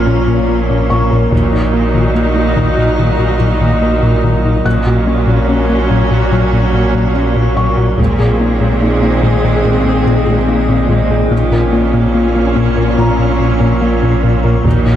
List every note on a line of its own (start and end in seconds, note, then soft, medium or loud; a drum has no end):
0.00 1.28 A#1 medium
0.00 1.28 A#2 medium
0.00 1.32 F3 medium
0.00 1.32 A#3 medium
0.00 1.28 C#4 soft
0.00 1.28 F4 soft
0.00 1.31 A#4 medium
0.00 1.32 C#5 medium
0.00 2.12 F6 soft
0.07 0.19 A#2 medium
0.07 0.19 C#4 soft
0.28 0.40 A#2 medium
0.28 0.40 A#3 medium
0.49 0.62 A#3 soft
0.49 0.61 F4 medium
0.70 0.82 A#2 medium
0.70 0.82 C#4 medium
0.90 1.03 A#2 medium
0.90 1.03 A#3 medium
0.90 3.36 C#6 soft
1.11 1.25 A#2 soft
1.11 1.24 A#4 medium
1.32 4.61 A#1 medium
1.32 4.61 A#2 medium
1.32 1.45 A#2 medium
1.32 1.45 D#3 medium
1.32 4.64 F#3 medium
1.32 4.62 A#3 medium
1.32 4.61 D#4 medium
1.32 4.61 F#4 soft
1.32 4.62 A#4 medium
1.32 4.66 D#5 medium
1.32 taiko medium
1.53 1.66 A#2 soft
1.53 1.65 D#4 medium
1.74 1.86 A#3 soft
1.94 2.08 A#2 medium
1.94 2.07 D#3 medium
2.15 2.28 A#3 soft
2.15 2.28 A#3 medium
2.36 2.48 A#3 medium
2.36 2.49 A#3 medium
2.57 2.69 A#2 medium
2.57 2.69 D#3 medium
2.57 taiko soft
2.78 2.90 A#2 soft
2.78 2.90 D#4 soft
2.99 3.11 A#2 medium
2.99 3.11 D#3 medium
3.19 3.32 A#2 soft
3.40 3.53 A#2 soft
3.40 3.53 F#3 medium
3.61 3.74 A#2 medium
3.61 3.74 D#3 medium
3.82 3.95 A#3 medium
4.03 4.15 A#2 medium
4.03 4.16 F#3 soft
4.24 4.36 A#2 medium
4.24 4.36 D#3 medium
4.45 4.57 A#2 medium
4.45 4.57 D#4 medium
4.65 7.95 A#1 medium
4.65 4.78 A#2 medium
4.65 7.95 A#2 medium
4.65 7.95 F#3 medium
4.65 4.78 F#3 medium
4.65 7.94 A#3 medium
4.65 7.95 C#4 medium
4.65 7.94 F#4 medium
4.65 7.95 A#4 medium
4.65 7.99 C#5 medium
4.65 7.11 F#6 soft
4.86 4.99 A#2 soft
4.86 4.99 F#4 soft
5.07 5.19 A#3 medium
5.07 5.20 C#4 medium
5.27 5.40 A#2 medium
5.27 5.40 F#3 medium
5.48 5.61 A#3 medium
5.48 5.61 C#4 medium
5.70 5.82 A#3 medium
5.70 5.82 C#4 soft
5.90 6.03 A#2 medium
5.90 6.03 F#3 medium
6.11 6.23 A#2 medium
6.11 6.24 F#4 soft
6.32 6.44 A#2 medium
6.32 6.45 F#3 medium
6.53 6.65 A#2 soft
6.73 6.86 A#2 soft
6.73 6.86 A#3 medium
6.95 7.07 A#2 medium
6.95 7.07 F#3 medium
7.16 7.28 A#3 medium
7.16 7.28 C#4 medium
7.36 7.49 A#2 medium
7.36 7.49 A#3 soft
7.56 7.69 A#2 medium
7.56 7.70 F#3 medium
7.56 10.03 C#6 soft
7.77 7.90 A#2 medium
7.77 7.90 F#4 medium
7.98 11.28 A#1 medium
7.98 8.10 A#2 medium
7.98 11.28 A#2 medium
7.98 11.32 D#3 medium
7.98 8.12 G#3 medium
7.98 11.28 C4 medium
7.98 11.32 C4 medium
7.98 11.28 G#4 medium
7.98 11.32 G#4 medium
7.98 11.32 D#5 medium
7.98 taiko medium
8.19 8.32 A#2 medium
8.19 8.32 G#4 medium
8.40 8.52 A#3 medium
8.40 8.53 D#4 medium
8.60 8.73 A#2 medium
8.60 8.74 G#3 medium
8.82 8.94 A#3 medium
8.82 8.95 D#4 medium
9.02 9.15 A#3 medium
9.02 9.15 D#4 soft
9.23 9.36 A#2 medium
9.23 9.36 G#3 medium
9.44 9.57 A#2 medium
9.44 9.57 G#4 soft
9.65 9.78 A#2 medium
9.65 9.78 G#3 medium
9.86 9.99 A#2 soft
10.07 10.19 A#2 medium
10.07 10.20 C4 medium
10.27 10.40 A#2 medium
10.27 10.40 G#3 medium
10.48 10.61 A#3 medium
10.48 10.61 D#4 medium
10.69 10.81 A#2 medium
10.69 10.82 C4 medium
10.89 11.02 A#2 medium
10.89 11.03 G#3 medium
11.10 11.23 A#2 medium
11.10 11.24 G#4 medium
11.31 14.61 A#1 medium
11.31 11.44 A#2 medium
11.31 14.61 A#2 medium
11.31 14.65 F3 medium
11.31 14.65 A#3 medium
11.31 11.44 A#3 medium
11.31 14.61 C#4 medium
11.31 14.61 F4 medium
11.31 14.65 A#4 medium
11.31 14.65 C#5 medium
11.51 11.64 A#2 medium
11.51 11.65 A#4 medium
11.73 11.85 A#3 medium
11.73 11.86 F4 soft
11.94 12.06 A#2 medium
11.94 12.06 A#3 medium
12.14 12.27 A#3 medium
12.14 12.27 F4 soft
12.35 12.49 A#3 medium
12.35 12.48 F4 medium
12.56 12.69 A#2 medium
12.56 12.69 A#3 medium
12.77 12.90 A#2 medium
12.77 12.90 A#4 soft
12.98 13.11 A#2 medium
12.98 13.10 A#3 medium
12.98 14.96 A#5 soft
13.19 13.32 A#2 soft
13.40 13.52 A#2 medium
13.40 13.52 C#4 soft
13.60 13.73 A#2 medium
13.60 13.73 A#3 medium
13.81 13.95 A#3 medium
13.81 13.94 F4 medium
14.02 14.15 A#2 medium
14.02 14.15 C#4 medium
14.23 14.36 A#2 medium
14.23 14.36 A#3 medium
14.44 14.57 A#2 medium
14.44 14.57 A#4 medium
14.64 14.96 A#1 medium
14.64 14.96 A#2 medium
14.64 14.78 A#2 medium
14.64 14.77 D#3 medium
14.64 14.96 F#3 medium
14.64 14.96 A#3 medium
14.64 14.96 D#4 soft
14.64 14.96 F#4 soft
14.64 14.96 A#4 medium
14.64 14.96 D#5 medium
14.64 taiko medium
14.64 riser medium
14.85 14.96 A#2 medium
14.85 14.96 D#4 soft